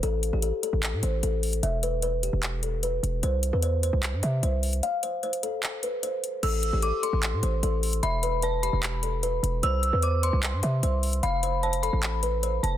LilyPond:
<<
  \new Staff \with { instrumentName = "Synth bell" } { \time 4/4 \key a \minor \tempo 4 = 150 r1 | r1 | r1 | r1 |
e'''4 d'''8 c'''2~ c'''8 | b''4 a''8 b''2~ b''8 | e'''4 d'''8 c'''2~ c'''8 | b''4 a''8 b''2 a''8 | }
  \new Staff \with { instrumentName = "Kalimba" } { \time 4/4 \key a \minor a'8. g'16 a'8 a'4 c''8 a'8 r8 | e''8 b'8 b'8 g'8 r8 a'8 b'8 r8 | c''8. b'16 c''8 c''4 e''8 c''8 r8 | f''8 c''8 c''8 a'4 b'8 c''8 r8 |
a'8. g'16 a'8 a'4 c''8 a'8 r8 | e''8 b'8 b'8 g'8 r8 a'8 b'8 r8 | c''8. b'16 c''8 c''4 e''8 c''8 r8 | f''8 c''8 c''8 a'4 b'8 c''8 r8 | }
  \new Staff \with { instrumentName = "808-style bass" } { \clef bass \time 4/4 \key a \minor a,,8. a,,8 r8 a,,8 a,16 a,,8 a,,4 | e,,4.~ e,,16 e,,4.~ e,,16 e,,8 | c,8. e,4 c,8 g,16 c8 c,4 | r1 |
a,,8. a,,8 r8 a,,8 a,16 a,,8 a,,4 | e,,4.~ e,,16 e,,4.~ e,,16 e,,8 | c,8. e,4 c,8 g,16 c8 c,4 | f,,4.~ f,,16 a,,4.~ a,,16 f,,8 | }
  \new DrumStaff \with { instrumentName = "Drums" } \drummode { \time 4/4 hh8 hh8 hh8 hh8 <hc hh>8 hh8 hh8 <hh hho>16 hh16 | hh8 hh8 hh8 hh8 <hc hh>8 hh8 hh8 hh8 | hh8 hh8 hh8 hh8 <hc hh>8 hh8 hh8 <hh hho>16 hh16 | hh8 hh8 hh16 hh16 hh8 <hc hh>8 hh8 hh8 hh8 |
<cymc hh>8 hh8 hh8 hh8 <hc hh>8 hh8 hh8 <hh hho>16 hh16 | hh8 hh8 hh8 hh8 <hc hh>8 hh8 hh8 hh8 | hh8 hh8 hh8 hh8 <hc hh>8 hh8 hh8 <hh hho>16 hh16 | hh8 hh8 hh16 hh16 hh8 <hc hh>8 hh8 hh8 hh8 | }
>>